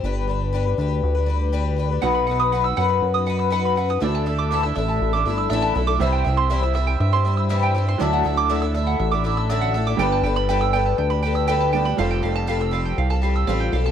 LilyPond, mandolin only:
\new Staff \with { instrumentName = "Mandolin" } { \time 4/4 \key g \major \tempo 4 = 120 r1 | fis''16 b''16 fis''16 dis'''16 fis''16 e'''16 fis''16 b''8 dis'''16 fis''16 e'''16 fis''16 b''16 fis''16 dis'''16 | e''16 a''16 e''16 d'''16 e''16 e'''16 e''16 a''8 d'''16 e''16 e'''16 e''16 a''16 e''16 d'''16 | e''16 g''16 e''16 c'''16 e''16 e'''16 e''16 g''16 e''16 c'''16 e''16 e'''16 e''16 g''16 e''16 c'''16 |
e''16 fis''16 e''16 d'''16 e''16 e'''16 e''16 fis''16 e''16 d'''16 e''16 e'''16 e''16 fis''16 e''16 d'''16 | g''16 a''16 g''16 b''16 g''16 e'''16 g''16 a''16 g''16 b''16 g''16 e'''16 g''16 a''16 g''16 b''16 | f''16 g''16 f''16 a''16 f''16 e'''16 f''16 g''16 f''16 a''16 f''16 e'''16 f''16 g''16 f''16 a''16 | }